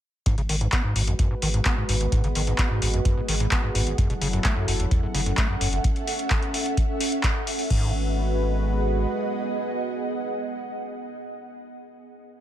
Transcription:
0.26 G#2 G#3 B3 F#4 B4, kick, closed hi-hat
0.38 G#1 C#3, closed hi-hat
0.49 G#1 D#3, open hi-hat
0.61 G#2, closed hi-hat
0.72 B3, kick, clap, closed hi-hat
0.83 G#2 G#4 D#5
0.96 G#1 G#2, open hi-hat
1.07 F#2, closed hi-hat
1.19 F#2, kick, closed hi-hat
1.31 G#2 F#5
1.42 G#1 D#3, open hi-hat
1.54 G#2, closed hi-hat
1.65 B3, kick, clap, closed hi-hat
1.78 G#2
1.89 G#1 G#2, open hi-hat
2.01 G#1, closed hi-hat
2.12 G#2, kick, closed hi-hat
2.24 G#1 C#3, closed hi-hat
2.35 G#1 D#3, open hi-hat
2.47 G#2, closed hi-hat
2.58 B3, kick, clap, closed hi-hat
2.71 G#2
2.82 G#1 G#2, open hi-hat
2.94 F#2, closed hi-hat
3.05 F#2, kick, closed hi-hat
3.17 G#2
3.28 G#1 D#3, open hi-hat
3.40 G#2, closed hi-hat
3.51 B3, kick, clap, closed hi-hat
3.64 G#2
3.75 G#1 G#2, open hi-hat
3.87 G#1, closed hi-hat
3.98 F#2 F#3 C#4 E4 A4, kick, closed hi-hat
4.10 F#1 B2, closed hi-hat
4.21 F#1 C#3 A4, open hi-hat
4.33 F#2, closed hi-hat
4.44 A3, kick, clap, closed hi-hat
4.57 F#2 E5
4.68 F#1 F#2, open hi-hat
4.80 E2, closed hi-hat
4.91 E2, kick, closed hi-hat
5.03 F#2
5.15 F#1 C#3, open hi-hat
5.26 F#2, closed hi-hat
5.37 A3, kick, clap, closed hi-hat
5.50 F#2
5.61 F#1 F#2, open hi-hat
5.73 F#1, closed hi-hat
5.84 kick, closed hi-hat
5.96 closed hi-hat
6.07 open hi-hat
6.19 closed hi-hat
6.30 kick, clap, closed hi-hat
6.43 closed hi-hat
6.54 open hi-hat
6.66 closed hi-hat
6.77 kick, closed hi-hat
7.00 open hi-hat
7.12 closed hi-hat
7.23 kick, clap, closed hi-hat
7.47 open hi-hat
7.59 open hi-hat
7.70 G#1 G#2 G#3 B3 F#4 B4, kick, crash
7.77 G#4
7.84 D#5
7.92 F#5

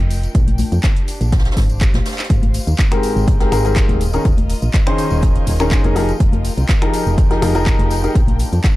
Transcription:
Already playing: F4 A#4 D#5 G5
0.00 F1
0.10 closed hi-hat, open hi-hat, tambourine
0.23 closed hi-hat, tambourine
0.35 A#1 D4, kick, closed hi-hat, tambourine
0.48 closed hi-hat, high conga
0.58 closed hi-hat, open hi-hat, tambourine, high conga
0.71 F2 G4, closed hi-hat, tambourine
0.83 kick, snare, clap, closed hi-hat
0.97 closed hi-hat
1.08 closed hi-hat, open hi-hat, tambourine
1.21 A#1 C5 F5, closed hi-hat, tambourine
1.32 kick, snare, closed hi-hat, tambourine
1.39 snare, closed hi-hat
1.45 snare, closed hi-hat
1.51 snare, closed hi-hat
1.57 G#1, kick, snare, closed hi-hat, open hi-hat, tambourine
1.69 closed hi-hat, tambourine
1.81 kick, clap, closed hi-hat
1.94 A#1, snare, closed hi-hat, high conga
2.06 snare, closed hi-hat, open hi-hat, tambourine
2.12 snare, closed hi-hat
2.18 snare, clap, closed hi-hat, tambourine
2.24 snare, closed hi-hat
2.30 G#1 F4, kick, closed hi-hat, tambourine
2.43 closed hi-hat, high conga
2.54 A#4, closed hi-hat, open hi-hat, tambourine
2.67 D#2, closed hi-hat, tambourine
2.78 kick, snare, clap, closed hi-hat, tambourine
2.92 G#2 C4 G4 G#4 A#4, finger snap, closed hi-hat
2.98 G5
3.03 D#5, closed hi-hat, open hi-hat, tambourine
3.16 G#1, tambourine
3.28 kick, closed hi-hat, tambourine
3.40 G#2 C4 G4 G#4 A#4, snare, closed hi-hat
3.52 G#1 G#2 C4 G4 G#4 A#4, finger snap, closed hi-hat, open hi-hat, tambourine
3.65 G#2 C4 G4 G#4 A#4, closed hi-hat, tambourine
3.76 kick, snare, clap, closed hi-hat, tambourine
3.89 D#1, closed hi-hat, high conga
4.01 closed hi-hat, open hi-hat, tambourine
4.13 D#3 C#4 D#4 G#4 A#4, closed hi-hat, tambourine
4.25 D#1, kick, closed hi-hat, tambourine
4.38 closed hi-hat, high conga
4.50 closed hi-hat, open hi-hat, tambourine
4.62 A#1, closed hi-hat, tambourine
4.73 kick, snare, clap, closed hi-hat, tambourine
4.87 D#3 C#4 D#4 G#4 C5 G#5, finger snap, closed hi-hat
4.98 closed hi-hat, open hi-hat, tambourine
5.10 D#1, tambourine
5.22 kick, closed hi-hat, tambourine
5.36 closed hi-hat
5.47 D#1, closed hi-hat, open hi-hat, tambourine
5.59 D#3 C#4 D#4 G#4 A#4, finger snap, snare, closed hi-hat, tambourine
5.70 C#4 D#4 G#4 C5, kick, snare, clap, closed hi-hat, tambourine
5.84 F1 C#4 D#4 G#4 A#4, closed hi-hat, high conga
5.96 F3 D#4 G4 G#4 A#4, closed hi-hat, open hi-hat, tambourine
6.09 closed hi-hat, tambourine
6.20 F1, kick, closed hi-hat, tambourine
6.33 closed hi-hat, high conga
6.44 G5, closed hi-hat, open hi-hat, tambourine
6.57 C2, closed hi-hat, tambourine
6.69 kick, snare, clap, closed hi-hat
6.82 F3 D#4 G4 G#4 A#4, finger snap, closed hi-hat
6.93 closed hi-hat, open hi-hat, tambourine
7.06 F1, tambourine
7.18 kick, closed hi-hat, tambourine
7.31 F3 D#4 G4 G#4 A#4, snare, closed hi-hat
7.42 F1 F3 D#4 G4 G#4 A#4, finger snap, closed hi-hat, open hi-hat, tambourine
7.55 F3 D#4 G4 G#4 A#4, closed hi-hat, tambourine
7.66 kick, snare, clap, closed hi-hat
7.79 F1, closed hi-hat, high conga
7.91 closed hi-hat, open hi-hat, tambourine
8.03 D#4 G4 G#4 A#4, closed hi-hat, tambourine
8.15 A#1 D4, kick, closed hi-hat, tambourine
8.28 closed hi-hat, high conga
8.39 closed hi-hat, open hi-hat, tambourine
8.53 F2, closed hi-hat, tambourine
8.64 kick, snare, clap, closed hi-hat, tambourine

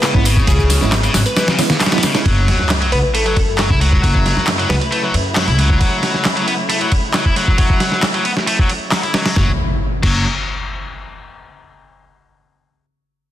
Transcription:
Already playing: C#3 G#3 B3 E4
0.03 C#3, snare, clap, ride, tambourine
0.14 G#1 G#3 B3 C#4 E4, kick
0.25 C#3, open hi-hat, ride, tambourine
0.37 kick, tambourine
0.47 C#2 C#3 G#4, kick, ride, tambourine
0.59 G#4, kick, tambourine
0.70 snare, open hi-hat, ride, tambourine
0.81 G#1 G#3 B3 C#4 E4, snare, tambourine
0.92 snare, clap, ride, tambourine
1.03 C#3, ride, tambourine
1.14 G#1 F#3, snare, open hi-hat, ride, tambourine
1.26 B4, ride, tambourine
1.37 E3 B4, snare, ride, tambourine
1.48 C#3, snare, ride, tambourine
1.59 G#3 B3 C#4 E4, snare, open hi-hat, ride, tambourine
1.70 snare, ride, tambourine
1.80 C#3, snare, clap, open hi-hat, ride, tambourine
1.86 snare, ride
1.92 G#3 B3 C#4 E4, snare, ride, tambourine
1.98 snare, ride
2.03 C#3, snare, open hi-hat, ride, tambourine
2.14 G#3 B3 C#4 E4, snare, ride, tambourine
2.25 F#1 C#3 F#3 A3 E4, kick, ride, sub drop
2.48 snare, ride
2.59 F#2, snare
2.69 snare, clap, ride
2.81 F#3, ride
2.92 C#2 B3 B4, ride
3.03 B4
3.14 A3 A4, ride
3.26 F#3 A4, ride
3.36 F#2 A4, kick, ride
3.58 F#3, snare, clap, ride
3.70 C#2 E4, kick
3.80 F#3, ride
3.92 kick
4.03 F#1 F#3, kick, ride
4.15 kick
4.26 snare, ride
4.36 F#2, snare
4.47 snare, clap, ride
4.58 F#3, ride
4.69 C#2 B3 B4, snare, ride
4.81 B4, ride
4.91 A3, ride
5.03 F#3
5.14 F#2, ride
5.36 F#3, snare, clap, open hi-hat
5.47 C#2 E4, ride
5.58 F#3, ride
5.70 kick
5.80 F#3, kick, ride
6.03 snare, ride
6.14 snare
6.25 snare, clap, ride
6.36 F#3, ride
6.47 B3, ride
6.69 A3, ride
6.81 F#3, ride
6.92 kick, ride
7.14 F#3, snare, clap, ride
7.25 E4, kick
7.36 F#3, ride
7.48 kick
7.58 F#3, kick, ride
7.70 kick
7.80 snare, ride
7.92 snare
8.03 snare, clap, ride
8.14 F#3, ride
8.25 B3, ride
8.37 snare
8.47 A3, ride
8.59 F#3, kick
8.69 ride
8.92 F#3, snare, clap, open hi-hat
9.03 E4, ride
9.14 F#3, snare, ride
9.26 snare, open hi-hat
9.36 F#1 C#3 F#3 A3 E4, kick, snare, impact
10.03 F#1 F#3, kick, crash

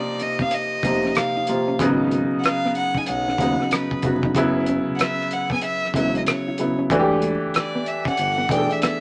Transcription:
Already playing: C3 F3 A#3 D#4 D5
0.20 D#5, muted hollow-body jazz guitar stroke, closed hi-hat
0.39 C4 F5, kick
0.51 D#5, muted hollow-body jazz guitar stroke, closed hi-hat
0.83 F1 C3 F3 A#3 B3 D#4, kick, closed hi-hat
1.05 C#4, cross-stick
1.15 F5, cross-stick, closed hi-hat
1.37 D#4
1.47 C3 F3 A#3 F4, muted hollow-body jazz guitar stroke, closed hi-hat
1.68 C#4
1.79 G#1 C#3 F#3 B3 D#4, kick, closed hi-hat
2.11 A3, closed hi-hat
2.33 B1
2.39 F#5
2.44 F5, cross-stick, closed hi-hat
2.65 B3, cross-stick
2.75 F#5, muted hollow-body jazz guitar stroke, closed hi-hat
2.94 D#4 G#5, kick
3.06 B1 F#5, closed hi-hat
3.28 C#4, cross-stick
3.38 D#2 C#3 F#3 B3 D#4, muted hollow-body jazz guitar stroke, kick, closed hi-hat
3.60 B3, cross-stick
3.71 C#4 B4, cross-stick, closed hi-hat
3.91 kick
4.02 F1 C#3 F#3 B3 F#4, muted hollow-body jazz guitar stroke, kick, closed hi-hat
4.23 D#4, kick
4.35 F#1 C#3 F#3 B3 E4, kick, closed hi-hat
4.66 C#4, closed hi-hat
4.89 E1
4.95 F#5, closed hi-hat
5.00 C#4 E5, cross-stick
5.21 cross-stick
5.31 F#5, muted hollow-body jazz guitar stroke, closed hi-hat
5.50 B3 G#5, kick
5.62 E5, muted hollow-body jazz guitar stroke, closed hi-hat
5.85 cross-stick
5.94 E1 C#3 F#3 A3 B3 E4, kick, closed hi-hat
5.98 E5
6.15 C#4 D#5, closed hi-hat
6.26 C#5, cross-stick, closed hi-hat
6.48 E4
6.58 C#3 F#3 B3 E4, muted hollow-body jazz guitar stroke, closed hi-hat
6.79 C#4
6.90 E1 E3 A3 D4 F#4, kick, closed hi-hat
6.99 G4
7.22 A3, closed hi-hat
7.45 G1
7.54 D5, cross-stick, closed hi-hat
7.75 B3
7.86 E5, muted hollow-body jazz guitar stroke, closed hi-hat
8.05 C#4 F#5, kick, closed hi-hat
8.17 G1, closed hi-hat
8.38 B3
8.49 B1 E3 A3 D4 G#4 G5, kick, closed hi-hat
8.58 A4
8.70 D4 E5, closed hi-hat
8.82 B3 E5, cross-stick, closed hi-hat

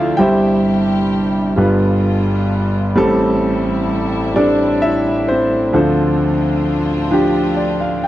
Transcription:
Already playing: D2 D3 F3 D4 E4 F4 A4 D5 E5 F5
0.17 G1 G2 C3 G3 E4 G4 C5 G5
0.21 E5
1.56 G1 G2 B2 G3 D4 F4 B4
2.94 A1 A2 G3 C4 E4 A4
4.34 G3 C4 D4 A4 D5
4.82 E4 E5
5.28 C4 C5
5.73 D2 D3 F3 D4 F4 A4 C5
5.79 C4 F4 A4
7.11 F3 D4 G4
7.57 D5
7.80 F5
8.04 G5

